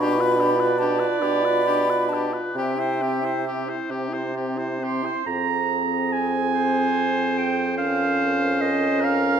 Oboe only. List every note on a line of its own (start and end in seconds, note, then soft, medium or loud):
0.02 0.22 G4 medium
0.21 0.42 B4 medium
0.40 0.62 G4 medium
0.60 0.79 B4 medium
0.79 1.01 G4 medium
0.99 1.23 B4 medium
1.22 1.47 G4 medium
1.45 1.66 B4 medium
1.67 1.92 G4 medium
1.90 2.15 B4 medium
2.13 2.35 G4 medium
2.33 2.56 B4 medium
2.58 2.81 G4 medium
2.80 3.04 C5 medium
3.02 3.26 G4 medium
3.25 3.47 C5 medium
3.47 3.71 G4 medium
3.69 3.92 C5 medium
3.91 4.15 G4 medium
4.13 4.36 C5 medium
4.37 4.60 G4 medium
4.58 4.85 C5 medium
4.84 5.07 G4 medium
5.06 5.27 C5 medium
6.54 7.73 C5 medium
7.77 9.03 C5 loud
9.01 9.40 A#4 medium